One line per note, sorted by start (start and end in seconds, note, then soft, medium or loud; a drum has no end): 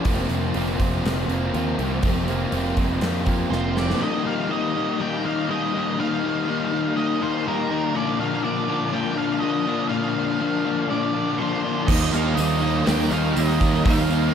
0.00 0.31 A#3 medium
0.00 0.56 F4 medium
0.04 0.26 F1 medium
0.04 1.03 F2 medium
0.04 0.52 C3 medium
0.04 0.30 F3 medium
0.04 0.29 A#3 loud
0.04 0.28 C4 medium
0.04 kick loud
0.04 open hi-hat medium
0.29 0.51 F1 medium
0.29 0.54 F3 medium
0.29 0.55 A#3 medium
0.29 0.56 C4 medium
0.29 open hi-hat medium
0.53 0.76 F1 medium
0.53 1.03 C3 medium
0.53 0.81 F3 medium
0.53 0.80 A#3 medium
0.53 0.79 C4 medium
0.53 1.55 F4 medium
0.53 open hi-hat medium
0.79 1.00 F1 medium
0.79 1.05 F3 medium
0.79 1.05 A#3 medium
0.79 1.05 C4 medium
0.79 kick medium
0.79 open hi-hat medium
1.04 1.25 F1 medium
1.04 1.54 F2 medium
1.04 1.52 C3 medium
1.04 1.30 F3 medium
1.04 1.29 A#3 medium
1.04 1.27 C4 medium
1.04 snare loud
1.04 open hi-hat medium
1.28 1.49 F1 medium
1.28 1.54 F3 medium
1.28 1.55 A#3 medium
1.28 1.55 C4 medium
1.28 open hi-hat soft
1.54 1.75 D#2 medium
1.54 2.03 C3 medium
1.54 1.81 F3 medium
1.54 1.81 A#3 medium
1.54 1.79 C4 medium
1.54 2.52 F4 medium
1.54 open hi-hat medium
1.78 1.99 C2 medium
1.78 2.03 F3 medium
1.78 2.05 A#3 medium
1.78 2.05 C4 medium
1.78 open hi-hat medium
2.03 2.45 F1 medium
2.03 2.53 F2 medium
2.03 2.52 C3 medium
2.03 2.29 F3 loud
2.03 2.28 A#3 medium
2.03 2.27 C4 loud
2.03 kick loud
2.03 open hi-hat medium
2.28 2.53 F3 medium
2.28 2.53 A#3 medium
2.28 2.54 C4 medium
2.28 open hi-hat soft
2.52 2.73 F1 medium
2.52 3.00 C3 medium
2.52 2.79 F3 medium
2.52 2.77 A#3 medium
2.52 2.76 C4 medium
2.52 3.52 F4 medium
2.52 open hi-hat medium
2.77 2.98 F1 medium
2.77 3.01 F3 medium
2.77 3.01 A#3 medium
2.77 3.02 C4 medium
2.77 kick medium
2.77 open hi-hat soft
3.01 3.51 F2 medium
3.01 3.43 F2 medium
3.01 3.49 C3 medium
3.01 3.26 F3 medium
3.01 3.25 A#3 medium
3.01 3.24 C4 medium
3.01 snare loud
3.01 open hi-hat medium
3.25 3.50 F3 medium
3.25 3.51 A#3 medium
3.25 3.52 C4 medium
3.25 kick medium
3.25 open hi-hat soft
3.50 3.92 F1 medium
3.50 3.99 C3 medium
3.50 3.76 F3 medium
3.50 3.76 A#3 medium
3.50 3.74 C4 medium
3.50 4.02 F4 medium
3.50 3.77 C5 medium
3.50 snare medium
3.75 4.00 F3 medium
3.75 4.00 A#3 medium
3.75 3.99 C4 medium
3.75 4.02 D5 medium
3.75 snare medium
3.90 snare medium
4.00 4.49 D#3 medium
4.00 4.26 G3 loud
4.00 4.25 A#3 loud
4.00 4.24 D#4 loud
4.00 4.26 D#5 loud
4.24 4.50 G3 medium
4.24 4.50 A#3 medium
4.24 4.52 D#4 medium
4.24 4.51 F5 loud
4.49 4.99 D#3 medium
4.49 4.77 G3 medium
4.49 4.76 A#3 medium
4.49 4.75 D#4 medium
4.49 5.02 D#5 loud
4.75 4.98 G3 medium
4.75 5.00 A#3 medium
4.75 5.00 D#4 medium
4.99 5.48 D#3 loud
4.99 5.26 G3 medium
4.99 5.26 A#3 loud
4.99 5.24 D#4 loud
4.99 5.25 G5 loud
5.25 5.48 G3 medium
5.25 5.50 A#3 medium
5.25 5.50 D#4 medium
5.25 5.50 F5 loud
5.49 5.97 D#3 medium
5.49 5.75 G3 medium
5.49 5.74 A#3 medium
5.49 5.72 D#4 medium
5.49 6.00 D#5 loud
5.74 5.98 G3 medium
5.74 6.00 A#3 medium
5.74 5.99 D#4 medium
5.98 6.46 D#3 medium
5.98 6.23 G3 loud
5.98 6.23 A#3 loud
5.98 6.21 D#4 loud
5.98 6.96 F5 loud
6.22 6.46 G3 medium
6.22 6.49 A#3 medium
6.22 6.49 D#4 medium
6.47 6.95 D#3 medium
6.47 6.73 G3 medium
6.47 6.73 A#3 medium
6.47 6.71 D#4 medium
6.72 6.96 G3 medium
6.72 6.97 A#3 medium
6.72 6.97 D#4 medium
6.96 7.44 D#3 loud
6.96 7.22 G3 loud
6.96 7.22 A#3 loud
6.96 7.20 D#4 loud
6.96 7.22 D#5 loud
7.21 7.45 G3 medium
7.21 7.47 A#3 medium
7.21 7.46 D#4 medium
7.21 7.47 C5 loud
7.46 7.93 D#3 medium
7.46 7.72 G3 medium
7.46 7.71 A#3 medium
7.46 7.70 D#4 medium
7.46 7.97 A#4 loud
7.71 7.94 G3 medium
7.71 7.96 A#3 medium
7.71 7.94 D#4 medium
7.94 8.92 A#2 loud
7.94 8.42 D3 loud
7.94 8.21 F3 loud
7.94 8.20 A#3 loud
7.94 8.19 D4 loud
7.94 8.20 D5 loud
8.19 8.43 F3 medium
8.19 8.44 A#3 medium
8.19 8.45 D4 medium
8.19 8.44 F5 loud
8.43 8.92 D3 medium
8.43 8.69 F3 medium
8.43 8.69 A#3 medium
8.43 8.67 D4 medium
8.43 8.95 D5 loud
8.67 8.93 F3 medium
8.67 8.94 A#3 medium
8.67 8.93 D4 medium
8.93 9.42 A#2 loud
8.93 9.40 D3 medium
8.93 9.18 F3 loud
8.93 9.17 A#3 loud
8.93 9.15 D4 loud
8.93 9.16 G5 loud
9.16 9.41 F3 medium
9.16 9.42 A#3 medium
9.16 9.42 D4 medium
9.16 9.40 F5 loud
9.40 9.89 D3 medium
9.40 9.68 F3 medium
9.40 9.67 A#3 medium
9.40 9.65 D4 loud
9.40 9.88 D#5 loud
9.66 9.90 F3 medium
9.66 9.91 A#3 medium
9.66 9.90 D4 medium
9.89 10.40 A#2 loud
9.89 10.38 D3 loud
9.89 10.17 F3 loud
9.89 10.16 A#3 loud
9.89 10.13 D4 loud
9.89 10.90 F5 loud
10.15 10.40 F3 medium
10.15 10.41 A#3 medium
10.15 10.41 D4 medium
10.39 10.89 D3 medium
10.39 10.67 F3 medium
10.39 10.66 A#3 medium
10.39 10.64 D4 medium
10.65 10.91 F3 medium
10.65 10.92 A#3 medium
10.65 10.92 D4 medium
10.90 11.40 A#2 medium
10.90 11.38 D3 loud
10.90 11.17 F3 loud
10.90 11.16 A#3 medium
10.90 11.13 D4 loud
10.90 11.41 D5 loud
11.14 11.40 F3 medium
11.14 11.41 A#3 medium
11.14 11.41 D4 medium
11.38 11.87 D3 medium
11.38 11.66 F3 medium
11.38 11.65 A#3 medium
11.38 11.63 D4 medium
11.38 11.90 C5 loud
11.64 11.89 F3 medium
11.64 11.90 A#3 medium
11.64 11.87 D4 medium
11.86 12.10 D#2 loud
11.86 12.37 D#3 loud
11.86 12.37 F3 medium
11.86 12.17 G3 loud
11.86 12.13 D#5 loud
11.86 kick loud
11.86 tambourine soft
11.86 crash loud
11.91 12.16 A#3 loud
11.91 12.14 D#4 loud
11.91 12.89 G4 loud
12.12 12.34 D#2 medium
12.12 12.39 A#3 medium
12.12 12.40 D#4 medium
12.12 12.35 F5 medium
12.12 tambourine medium
12.17 12.39 G3 medium
12.35 12.81 D#2 loud
12.35 12.87 D#3 medium
12.35 13.62 F3 medium
12.35 12.65 G3 medium
12.35 12.88 D#5 loud
12.35 open hi-hat medium
12.35 tambourine loud
12.39 12.64 A#3 medium
12.39 12.62 D#4 medium
12.63 13.35 D#3 medium
12.63 12.87 G3 medium
12.63 12.88 A#3 medium
12.63 12.88 D#4 medium
12.63 tambourine soft
12.86 13.09 D#2 medium
12.86 13.34 D#3 loud
12.86 13.14 G3 loud
12.86 13.12 A#3 loud
12.86 13.11 D#4 loud
12.86 14.11 G4 medium
12.86 13.86 G4 medium
12.86 13.12 G5 loud
12.86 snare loud
12.86 open hi-hat medium
12.86 tambourine medium
13.10 13.33 D#2 medium
13.10 13.35 A#3 medium
13.10 13.36 D#4 medium
13.10 13.33 F5 loud
13.10 tambourine medium
13.15 13.34 G3 medium
13.33 13.58 D#2 medium
13.33 13.84 D#3 medium
13.33 13.61 G3 medium
13.33 13.60 A#3 medium
13.33 13.85 D#5 loud
13.33 open hi-hat medium
13.33 tambourine loud
13.38 13.59 D#4 medium
13.50 snare soft
13.60 13.82 D#2 medium
13.60 13.85 G3 medium
13.60 13.86 A#3 medium
13.60 13.86 D#4 medium
13.60 kick medium
13.60 tambourine medium
13.85 14.29 D#2 loud
13.85 14.34 D#3 loud
13.85 14.34 F3 medium
13.85 14.10 G3 loud
13.85 14.09 A#3 loud
13.85 14.08 D#4 loud
13.85 14.34 G4 loud
13.85 14.34 F5 loud
13.85 kick loud
13.85 open hi-hat medium
13.85 tambourine soft
14.09 14.34 G3 medium
14.09 14.34 A#3 medium
14.09 14.34 D#4 medium
14.09 tambourine medium